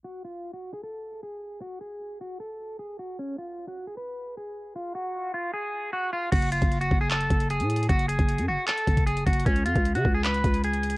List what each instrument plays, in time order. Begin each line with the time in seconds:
0.04 clean electric guitar F#4
0.25 clean electric guitar F4
0.53 clean electric guitar F#4
0.73 clean electric guitar G#4
0.83 clean electric guitar A4
1.23 clean electric guitar G#4
1.62 clean electric guitar F#4
1.81 clean electric guitar G#4
2.21 clean electric guitar F#4
2.40 clean electric guitar A4
2.79 clean electric guitar G#4
2.99 clean electric guitar F#4
3.19 clean electric guitar C#4
3.38 clean electric guitar F4
3.68 clean electric guitar F#4
3.87 clean electric guitar G#4
3.97 clean electric guitar B4
4.37 clean electric guitar G#4
4.76 clean electric guitar F4
4.95 clean electric guitar F#4
5.34 clean electric guitar F4
5.54 clean electric guitar G#4
5.93 clean electric guitar F#4
6.13 clean electric guitar F4
6.32 808-style bass F#1, clean electric guitar F#4, kick, closed hi-hat, crash
6.42 closed hi-hat
6.52 clean electric guitar F4, closed hi-hat
6.62 808-style bass F#1, kick, closed hi-hat
6.72 closed hi-hat
6.81 clean electric guitar F#4, closed hi-hat
6.91 808-style bass F#1, kick
7.01 clean electric guitar G#4
7.11 clean electric guitar A4, clap, closed hi-hat
7.21 closed hi-hat
7.30 808-style bass F#1, kick, closed hi-hat
7.40 closed hi-hat
7.50 clean electric guitar G#4, closed hi-hat
7.60 808-style bass A2, closed hi-hat
7.70 closed hi-hat
7.76 closed hi-hat
7.83 closed hi-hat
7.89 808-style bass F#1, clean electric guitar F#4, kick, closed hi-hat
7.99 closed hi-hat
8.08 clean electric guitar G#4, closed hi-hat
8.19 808-style bass F#1, kick, closed hi-hat
8.29 closed hi-hat
8.38 808-style bass F#2, closed hi-hat
8.48 808-style bass F#1, clean electric guitar F#4
8.68 clean electric guitar A4, clap, closed hi-hat
8.78 closed hi-hat
8.87 808-style bass F#1, kick, closed hi-hat
8.97 kick, closed hi-hat
9.07 clean electric guitar G#4, closed hi-hat
9.17 closed hi-hat
9.27 808-style bass F#1, clean electric guitar F#4, kick, closed hi-hat
9.33 closed hi-hat
9.40 closed hi-hat
9.46 808-style bass C#2, clean electric guitar C#4, kick, closed hi-hat
9.56 closed hi-hat
9.66 808-style bass F2, clean electric guitar F4, closed hi-hat
9.76 808-style bass C#2, kick, closed hi-hat
9.85 closed hi-hat
9.95 808-style bass C#3, clean electric guitar F#4, closed hi-hat
10.05 808-style bass C#2, kick
10.14 clean electric guitar G#4
10.24 clean electric guitar B4, clap, closed hi-hat
10.34 closed hi-hat
10.44 808-style bass C#2, kick, closed hi-hat
10.54 closed hi-hat
10.64 clean electric guitar G#4, closed hi-hat
10.74 closed hi-hat
10.83 closed hi-hat
10.90 closed hi-hat